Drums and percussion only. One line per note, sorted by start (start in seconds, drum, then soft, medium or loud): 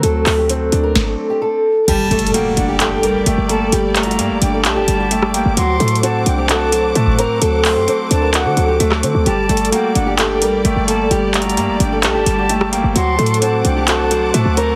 0.03 closed hi-hat medium
0.26 cross-stick medium
0.26 clap loud
0.26 open hi-hat medium
0.49 closed hi-hat medium
0.72 closed hi-hat medium
0.96 kick loud
0.96 snare medium
1.88 closed hi-hat medium
1.88 crash loud
2.11 closed hi-hat medium
2.19 closed hi-hat medium
2.27 closed hi-hat medium
2.34 closed hi-hat medium
2.57 closed hi-hat medium
2.80 clap loud
2.80 closed hi-hat medium
3.03 closed hi-hat medium
3.26 closed hi-hat medium
3.49 closed hi-hat medium
3.72 closed hi-hat medium
3.96 clap loud
3.96 closed hi-hat medium
3.96 open hi-hat medium
4.03 closed hi-hat medium
4.11 closed hi-hat medium
4.19 closed hi-hat medium
4.42 closed hi-hat medium
4.65 clap loud
4.65 closed hi-hat medium
4.88 closed hi-hat medium
5.11 closed hi-hat medium
5.22 cross-stick medium
5.34 closed hi-hat medium
5.57 closed hi-hat medium
5.80 closed hi-hat medium
5.88 closed hi-hat medium
5.95 closed hi-hat medium
6.03 closed hi-hat medium
6.26 closed hi-hat medium
6.49 clap loud
6.49 closed hi-hat medium
6.72 closed hi-hat medium
6.95 closed hi-hat medium
7.07 kick medium
7.19 closed hi-hat medium
7.42 closed hi-hat medium
7.65 clap loud
7.65 open hi-hat medium
7.88 closed hi-hat medium
8.11 closed hi-hat medium
8.34 clap loud
8.34 closed hi-hat medium
8.57 closed hi-hat medium
8.80 closed hi-hat medium
8.92 cross-stick loud
8.92 clap medium
9.03 closed hi-hat medium
9.26 closed hi-hat medium
9.49 closed hi-hat medium
9.57 closed hi-hat medium
9.65 closed hi-hat medium
9.72 closed hi-hat medium
9.95 closed hi-hat medium
10.19 clap loud
10.19 closed hi-hat medium
10.42 closed hi-hat medium
10.65 closed hi-hat medium
10.88 closed hi-hat medium
11.11 closed hi-hat medium
11.34 clap loud
11.34 closed hi-hat medium
11.34 open hi-hat medium
11.42 closed hi-hat medium
11.49 closed hi-hat medium
11.57 closed hi-hat medium
11.80 closed hi-hat medium
12.03 clap loud
12.03 closed hi-hat medium
12.26 closed hi-hat medium
12.49 closed hi-hat medium
12.61 cross-stick loud
12.73 closed hi-hat medium
12.96 closed hi-hat medium
13.19 closed hi-hat medium
13.26 closed hi-hat medium
13.34 closed hi-hat medium
13.42 closed hi-hat medium
13.65 closed hi-hat medium
13.88 clap loud
13.88 closed hi-hat medium
14.11 closed hi-hat medium
14.34 closed hi-hat medium
14.57 closed hi-hat medium